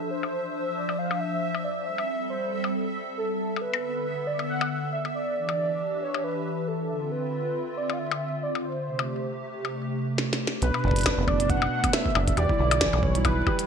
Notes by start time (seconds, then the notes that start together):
Already playing: F3 D4 A4 C5 E5
0.11 C5
0.23 percussion blips
0.77 D5
0.89 percussion blips
0.99 F5
1.11 percussion blips
1.20 E5
1.55 percussion blips
1.64 D5
1.86 G3 C4 A4 E5
1.98 percussion blips
2.30 C5
2.64 percussion blips
3.17 A4
3.56 percussion blips
3.61 D3 B3 A4 B4
3.74 percussion blips
4.27 D5
4.39 percussion blips
4.49 F#5
4.61 percussion blips
4.93 E5
5.05 percussion blips
5.15 D5
5.36 E3 D4 G4
5.49 percussion blips
6.02 C#5
6.14 percussion blips
6.24 B4
6.68 A4
6.90 D3 C4 F4
7.12 B4
7.77 D5
7.90 F5, percussion blips
7.99 E5
8.11 percussion blips
8.43 D5
8.55 percussion blips
8.65 C5
8.87 C3 A3 G4
8.99 percussion blips
9.65 percussion blips
10.18 snare
10.33 snare
10.47 snare
10.62 B1 B2 A3 B3 D4 B4, closed hi-hat
10.74 percussion blips
10.84 F#1 D4, kick
10.88 kick
10.91 kick
10.96 closed hi-hat
10.99 closed hi-hat
11.01 closed hi-hat
11.03 D4, kick, snare, closed hi-hat
11.06 closed hi-hat, percussion blips
11.18 F#1 B3
11.28 B3 D5, kick, percussion blips
11.40 B3, closed hi-hat
11.50 B2 F#5, kick, closed hi-hat
11.62 percussion blips
11.84 B3, kick, closed hi-hat, percussion blips
11.93 B3 E5, snare, closed hi-hat
12.06 kick
12.15 F#1 D4, percussion blips
12.28 kick, closed hi-hat
12.37 E2 D3 G3 E4 G4 D5, closed hi-hat, percussion blips
12.49 E4, kick
12.59 B1 E4
12.71 E4, closed hi-hat, percussion blips
12.81 E3, kick, snare, closed hi-hat
12.93 B1, percussion blips
13.03 C#5, kick
13.15 E4, closed hi-hat
13.25 E4 B4, kick, closed hi-hat, percussion blips
13.47 G4, kick, percussion blips
13.59 closed hi-hat